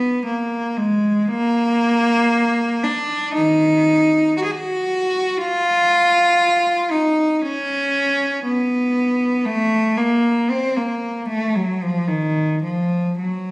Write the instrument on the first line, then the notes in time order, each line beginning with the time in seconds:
cello
Already playing: B3
0.26 A#3
0.77 G#3
1.28 A#3
2.84 D4
3.34 D#3 D#4
4.37 F#4
4.44 G#4
4.50 F#4
5.37 F4
6.91 D#4
7.41 C#4
8.44 B3
9.45 A3
9.97 A#3
10.50 C4
10.76 A#3
11.28 A3
11.55 F#3
11.83 F3
12.08 D#3
12.62 F3
13.18 F#3